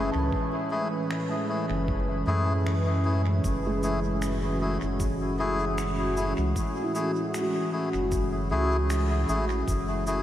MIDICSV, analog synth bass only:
0, 0, Header, 1, 2, 480
1, 0, Start_track
1, 0, Key_signature, 3, "minor"
1, 0, Tempo, 779221
1, 201, Time_signature, 4, 2, 24, 8
1, 6300, End_track
2, 0, Start_track
2, 0, Title_t, "Analog synth bass"
2, 0, Program_c, 0, 38
2, 0, Note_on_c, 0, 30, 81
2, 66, Note_off_c, 0, 30, 0
2, 91, Note_on_c, 0, 37, 78
2, 188, Note_off_c, 0, 37, 0
2, 1047, Note_on_c, 0, 30, 78
2, 1379, Note_off_c, 0, 30, 0
2, 1399, Note_on_c, 0, 42, 94
2, 2099, Note_off_c, 0, 42, 0
2, 2121, Note_on_c, 0, 30, 94
2, 2945, Note_off_c, 0, 30, 0
2, 2972, Note_on_c, 0, 30, 84
2, 3906, Note_off_c, 0, 30, 0
2, 3931, Note_on_c, 0, 37, 78
2, 4028, Note_off_c, 0, 37, 0
2, 4891, Note_on_c, 0, 30, 82
2, 5240, Note_on_c, 0, 37, 95
2, 5249, Note_off_c, 0, 30, 0
2, 5699, Note_off_c, 0, 37, 0
2, 5723, Note_on_c, 0, 33, 83
2, 5936, Note_off_c, 0, 33, 0
2, 5961, Note_on_c, 0, 30, 96
2, 6300, Note_off_c, 0, 30, 0
2, 6300, End_track
0, 0, End_of_file